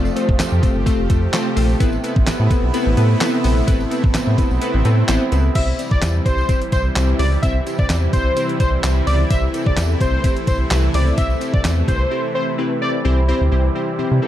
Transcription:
Already playing: F1 C3 F3 A3 C4 G4 A4 F5
0.05 tambourine
0.16 A3 C4 F4 A4 C5, closed hi-hat, tambourine
0.29 F1 F5, kick
0.39 F2 A3 C4 F4 A4 C5, snare, clap, closed hi-hat, tambourine
0.52 F2 C4
0.63 A3 C4 F4 A4 C5, kick, closed hi-hat, tambourine
0.75 G1 C4
0.86 A3 C4 F4 A4 C5, kick, closed hi-hat, tambourine
0.99 F1 F5
1.10 F2 A3 C4 F4 A4 C5, kick, closed hi-hat, tambourine
1.33 F3 A3 C4 F4 A4 C5, snare, clap, closed hi-hat, tambourine
1.46 C4
1.56 A#1 A3 C4 F4 A4 C5, open hi-hat, tambourine
1.69 tambourine
1.80 A1 C3 A3 B3 C4 E4 A4 B4, kick, closed hi-hat, tambourine
1.93 tambourine
2.04 B3 C4 E4 A4 B4, closed hi-hat, tambourine
2.16 A1 C5, kick
2.27 A2 B3 C4 E4 A4 B4, snare, clap, closed hi-hat, tambourine
2.40 A2 B3
2.50 B3 C4 E4 A4 B4, kick, closed hi-hat, tambourine
2.63 B1 B3
2.74 B3 C4 E4 A4 B4, closed hi-hat, tambourine
2.86 A1 C5
2.97 A2 B3 C4 E4 A4 B4, closed hi-hat, tambourine
3.21 C3 B3 C4 E4 A4 B4, snare, clap, closed hi-hat, tambourine
3.34 B3
3.44 A#1 B3 C4 E4 A4 C5, open hi-hat, tambourine
3.57 tambourine
3.67 A1 C3 B3 C4 E4 A4 B4, kick, closed hi-hat, tambourine
3.80 tambourine
3.91 B3 C4 E4 A4 B4, closed hi-hat, tambourine
4.04 A1 C5, kick
4.14 A2 B3 C4 E4 A4 B4, snare, clap, closed hi-hat, tambourine
4.27 A2 B3
4.38 B3 C4 E4 A4 B4, kick, closed hi-hat, tambourine
4.51 B1 B3, tambourine
4.61 B3 C4 E4 A4 B4, closed hi-hat, tambourine
4.74 A1 C5
4.85 A2 B3 C4 E4 A4 B4, closed hi-hat, tambourine
5.08 A1 C3 B3 C4 E4 A4 C5, snare, clap, closed hi-hat, tambourine
5.21 B3
5.32 C#2 B3 C4 E4 A4 B4, closed hi-hat, tambourine
5.55 C2 C3 E3 G3 C4 E4 G4 C5 E5, kick, closed hi-hat, crash, tambourine
5.79 C4 E4 G4 D5, closed hi-hat, tambourine
5.91 C2 D5, kick
6.02 E2 C4 E4 G4 C5, snare, clap, closed hi-hat, tambourine
6.25 C2 C4 E4 G4 C5, kick, closed hi-hat, tambourine
6.38 tambourine
6.49 C4 E4 G4 C5, kick, closed hi-hat, tambourine
6.62 closed hi-hat
6.72 C2 C4 E4 G4 C5, kick, closed hi-hat, tambourine
6.95 C2 C4 E4 G4 C5, snare, clap, closed hi-hat, tambourine
7.19 C#2 C4 E4 G4 C5 D5, open hi-hat, tambourine
7.32 tambourine
7.42 C2 C4 E4 G4 C5 E5, kick, closed hi-hat, tambourine
7.66 C4 E4 G4 C5, closed hi-hat, tambourine
7.79 C2 D5, kick
7.90 E2 C4 E4 G4 C5, snare, clap, closed hi-hat, tambourine
8.13 C2 C4 E4 G4 C5, kick, closed hi-hat, tambourine
8.36 C4 E4 G4 C5, closed hi-hat, tambourine
8.49 closed hi-hat
8.60 C2 C4 E4 G4 C5 D5, kick, closed hi-hat, tambourine
8.83 C2 C4 E4 G4 C5, snare, clap, closed hi-hat, tambourine
9.07 C#2 C4 E4 G4 C5 D5, open hi-hat, tambourine
9.30 C2 A3 C4 E4 G4 C5 E5, kick, closed hi-hat, tambourine
9.54 C4 E4 G4 A4, closed hi-hat, tambourine
9.66 C2 D5, kick
9.77 E2 C4 E4 G4 A4, snare, clap, closed hi-hat, tambourine
10.00 C2 C4 E4 G4 C5, kick, closed hi-hat, tambourine
10.24 C4 E4 G4 C5, kick, closed hi-hat, tambourine
10.37 closed hi-hat
10.47 C2 C4 E4 G4 C5, kick, closed hi-hat, tambourine
10.70 C2 C4 E4 G4 B4, snare, clap, closed hi-hat, tambourine
10.94 C#2 C4 E4 G4 C5 D5, open hi-hat, tambourine
11.07 tambourine
11.17 C2 C4 E4 G4 C5 E5, kick, closed hi-hat, tambourine
11.30 tambourine
11.40 C4 E4 G4 C5, closed hi-hat, tambourine
11.54 C2 D5, kick
11.64 E2 C4 E4 G4 C5, snare, clap, closed hi-hat, tambourine
11.88 C2 C4 E4 G4 B4 C5, kick, closed hi-hat, tambourine
12.11 C4 E4 G4 C5
12.35 C4 E4 G4 C5
12.58 C4 E4 G4 B4
12.81 C4 E4 G4 C5 D5
13.05 C2 C3 E3 G3 C4 E4 G4 C5
13.18 C4
13.28 C4 E4 G4 C5
13.41 D2 E5
13.52 C2 C4 E4 G4 C5
13.65 C4
13.75 C4 E4 G4 C5
13.99 C3 C4 E4 G4 C5
14.11 C3 E5
14.22 C4 E4 G4 A4

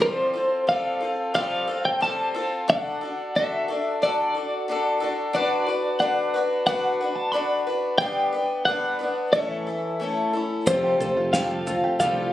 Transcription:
0.00 F3 G3 C4 F4 A4 C5
0.34 C4 F4 A4
0.67 G3 C4 F4 A4 F5
1.01 C4 F4 A4
1.34 F3 G3 C4 F4 A4 F5
1.67 C4 F4 A4
1.85 G5
2.01 G3 C4 F4 A4 A5
2.35 C4 F4 A4
2.68 D3 D4 F#4 A4 F#5
3.01 D4 F#4 A4
3.35 D3 D4 F#4 A4 E5
3.68 D4 F#4 A4
4.02 D3 D4 F#4 A4 D5
4.35 D4 F#4 A4
4.68 D3 D4 F#4 A4
5.00 D4 F#4 A4
5.33 D3 D4 F#4 B4 D5
5.67 D4 F#4 B4
5.99 D3 D4 F#4 B4 F#5
6.34 D4 F#4 B4
6.66 D3 D4 F#4 B4 F#5
7.01 D4 F#4 B4
7.16 A5
7.32 D3 D4 F#4 B5
7.36 B4
7.67 D4 F#4 B4
7.98 G3 B3 D4 G5
8.03 B4
8.32 B3 D4 B4
8.65 G3 B3 D4 F#5
8.70 B4
8.99 B3 D4 B4
9.33 A2 E3 A3 C#4 E4 A4 E5
9.67 C#4 E4 A4
10.00 A3 C#4 E4 A4
10.33 C#4 E4 A4
10.66 F1 F2 C3 F3 G3 A3 C4 F4 G4 A4 C5, kick, floor tom, shaker
10.84 G4
11.00 F1 C4 F4 A4, floor tom, shaker
11.17 F4
11.33 F3 G3 A3 C4 F4 G4 A4 C5 F5, kick, snare, floor tom, shaker
11.51 A4
11.66 C4 F4 A4, floor tom, shaker
11.84 G4
12.00 C2 F3 G3 A3 C4 F4 G4 A4 D5 F5, kick, floor tom, shaker
12.17 F4

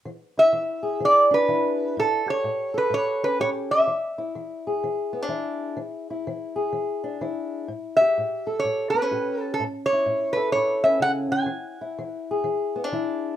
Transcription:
0.05 E3
0.38 E4 E5
0.53 E3
0.83 G#4
1.00 E3
1.05 D5
1.31 D4 B4
1.48 E3 E4
1.97 A2 A4
2.26 G4 C#5
2.44 A2
2.74 A4 B4
2.90 A2 C#5
3.23 C#4 B4
3.40 A2 G4 C#5
3.71 E5
3.87 E3
4.18 E4
4.35 E3
4.67 G#4
4.84 E3
5.13 B3
5.22 D4
5.28 E3 E4
5.77 E3
6.10 E4
6.27 E3
6.56 G#4
6.73 E3
7.04 D4
7.21 E3 E4
7.68 A2
7.97 E5
8.01 G4
8.18 A2
8.47 A4
8.59 C#5
8.64 A2
8.90 B3 B4
9.02 C#4
9.11 A2 G4
9.41 A4
9.54 A4
9.60 A2
9.86 C#5
9.93 E4
10.06 A2
10.33 A4 B4
10.52 A2 C#5
10.84 C#4 E5
11.00 C#3 F#5
11.32 D3 G#5
11.46 E3
11.81 E4
11.99 E3
12.31 G#4
12.44 E3
12.76 B3
12.84 D4
12.92 E3 E4

